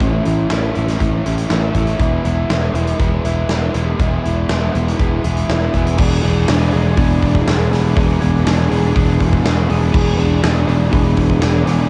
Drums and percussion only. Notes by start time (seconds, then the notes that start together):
0.00 kick, closed hi-hat
0.25 closed hi-hat
0.50 snare, closed hi-hat
0.75 closed hi-hat
0.88 snare, closed hi-hat
1.00 kick, closed hi-hat
1.26 closed hi-hat
1.38 closed hi-hat
1.50 snare, closed hi-hat
1.74 kick, closed hi-hat
1.87 closed hi-hat
2.00 kick, closed hi-hat
2.25 closed hi-hat
2.50 snare, closed hi-hat
2.75 closed hi-hat
2.87 closed hi-hat
3.00 kick, closed hi-hat
3.25 closed hi-hat
3.49 snare, closed hi-hat
3.74 closed hi-hat
3.99 kick, closed hi-hat
4.25 closed hi-hat
4.49 snare, closed hi-hat
4.75 closed hi-hat
4.88 closed hi-hat
4.99 kick, closed hi-hat
5.24 closed hi-hat
5.37 closed hi-hat
5.49 snare, closed hi-hat
5.74 kick, closed hi-hat
5.86 closed hi-hat
5.98 kick, crash
6.23 open hi-hat
6.48 snare, open hi-hat
6.72 open hi-hat
6.97 kick, open hi-hat
7.22 kick, open hi-hat
7.35 kick
7.47 snare, open hi-hat
7.73 snare, open hi-hat
7.97 kick, open hi-hat
8.22 open hi-hat
8.47 snare, open hi-hat
8.71 open hi-hat
8.96 kick, open hi-hat
9.20 kick, open hi-hat
9.33 kick
9.45 snare, open hi-hat
9.70 open hi-hat
9.94 kick, crash
10.19 open hi-hat
10.44 snare, open hi-hat
10.68 open hi-hat
10.93 kick, open hi-hat
11.17 kick, open hi-hat
11.30 kick
11.42 snare, open hi-hat
11.67 snare, open hi-hat